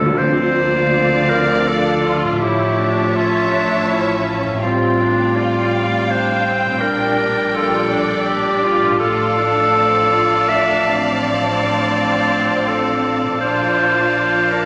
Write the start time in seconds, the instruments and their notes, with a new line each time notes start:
Already playing: harp C4 A5, clarinet A4
0.00 harp D3
0.05 timpani D3, harp D4
0.10 harp F4
0.17 double bass section D2, cello section D3, french horn section F3 F4, viola section C4, clarinet C5, violin section D5 F5
0.57 viola section A#3
0.94 viola section C4
1.29 clarinet A#4
1.67 viola section D4, clarinet A4
2.04 viola section F4
2.23 harp A2
2.28 harp C#4
2.32 harp E5
2.37 harp A4, violin section E5 A5
2.41 double bass section A1, cello section A2, viola section E4, clarinet G4, violin section C#5, french horn section C#5
2.79 viola section D4
3.15 viola section C#4, clarinet F4
3.53 viola section D4
3.88 viola section C#4, clarinet E4
4.44 harp A2
4.49 harp C4
4.53 harp F4
4.58 french horn section G3 C4, harp G4, violin section F5 G5
4.62 viola section C4, clarinet F4
4.99 viola section D4
5.36 viola section F4, clarinet D5
5.74 viola section F4
6.10 viola section D4, clarinet C5
6.47 viola section C4
6.65 harp A#2
6.70 harp D4
6.74 harp F4
6.79 cello section A#2, harp G4, clarinet A#4
6.83 double bass section A#1, viola section D4, french horn section D4, violin section D5
7.54 viola section F4, clarinet A4
7.92 viola section D4
8.27 viola section D4, clarinet G4
8.64 viola section F4
8.82 harp A2
8.87 harp D4
8.91 harp F4
8.96 cello section A2, harp A5
9.00 double bass section A1, french horn section F3 D4, viola section F4, clarinet A4, violin section D5 F5 A5
9.38 viola section D4
9.75 viola section C4
10.11 viola section F4
10.49 viola section D4, clarinet E5
10.86 viola section C4
11.22 clarinet D5
12.68 clarinet A4
13.24 harp A#2
13.28 harp D4
13.33 harp F4
13.40 double bass section A#1, cello section A#2, french horn section F3 D4, viola section F4, clarinet C5, violin section D5 F5 A5
14.16 viola section F4
14.52 viola section D4, clarinet A#4